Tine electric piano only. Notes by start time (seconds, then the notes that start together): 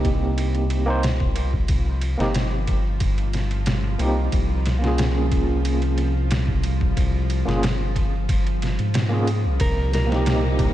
Already playing: A#3 C4 D#4 G4
0.86 A#3 C4 D#4
0.90 C5
2.18 A#3 C4 D#4
2.22 G4
3.98 A#3 C4 D#4
4.02 G4
4.79 A#3 C#4
4.85 F4 G#4
7.45 A#3 C#4 F4
7.50 G#4
9.09 A#3 C#4 F4
9.14 G#4
10.07 A#3 C4
10.13 D#4 G4